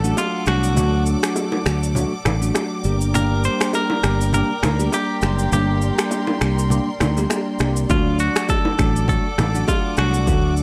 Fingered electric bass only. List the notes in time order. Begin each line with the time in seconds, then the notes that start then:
Already playing: A1
0.47 C2
0.77 D2
1.66 D2
2.25 A1
2.85 G1
4.04 G1
4.63 D2
5.23 F#1
5.52 G1
6.41 C2
7.01 D2
7.60 C2
7.90 D2
8.79 A1
9.38 A1
9.98 C2
10.28 D2